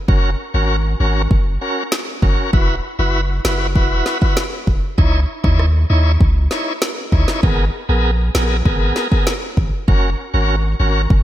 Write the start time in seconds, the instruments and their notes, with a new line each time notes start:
0.08 sub bass F#1, tonewheel organ C#4 F#4 A#4, kick
0.54 sub bass G#1, tonewheel organ C#4 F#4 A#4
1.00 sub bass G#1, tonewheel organ C#4 F#4 A#4
1.31 sub bass F#1, kick
1.61 tonewheel organ C#4 F#4 A#4
1.92 snare
2.22 sub bass F#1, tonewheel organ C#4 F#4 A#4, kick
2.53 sub bass E1, tonewheel organ E4 F#4 B4, kick
2.99 sub bass F#1, tonewheel organ E4 F#4 B4
3.45 sub bass F#1, tonewheel organ E4 F#4 B4, snare
3.75 sub bass E1, tonewheel organ E4 F#4 B4, kick
4.06 snare
4.21 tonewheel organ E4 F#4 B4, kick
4.37 snare
4.67 sub bass E1, kick
4.98 sub bass C#2, tonewheel organ D#4 E4 C#5, kick
5.44 sub bass D#2, tonewheel organ D#4 E4 C#5, kick
5.59 cross-stick
5.90 sub bass D#2, tonewheel organ D#4 E4 C#5
6.21 sub bass C#2, kick
6.51 tonewheel organ D#4 E4 C#5, snare
6.82 snare
7.12 sub bass C#2, tonewheel organ D#4 E4 C#5, kick
7.28 snare
7.43 sub bass G#1, tonewheel organ B3 G#4 A#4, kick
7.89 sub bass A#1, tonewheel organ B3 G#4 A#4
8.35 sub bass A#1, tonewheel organ B3 G#4 A#4, snare
8.65 sub bass G#1, tonewheel organ B3 G#4 A#4, kick
8.96 snare
9.11 tonewheel organ B3 G#4 A#4, kick
9.27 snare
9.57 sub bass G#1, kick
9.88 sub bass F#1, tonewheel organ C#4 F#4 A#4, kick
10.34 sub bass G#1, tonewheel organ C#4 F#4 A#4
10.80 sub bass G#1, tonewheel organ C#4 F#4 A#4
11.10 sub bass F#1, kick